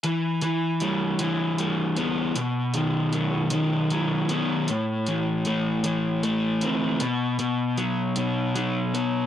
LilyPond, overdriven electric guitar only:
\new Staff \with { instrumentName = "Overdriven electric guitar" } { \clef bass \time 6/8 \key e \minor \tempo 4. = 52 e8 e8 g8 e8 g8 b8 | b,8 dis8 fis8 dis8 fis8 b8 | a,8 e8 a8 e8 a8 c'8 | b,8 b,8 fis8 b,8 fis8 b8 | }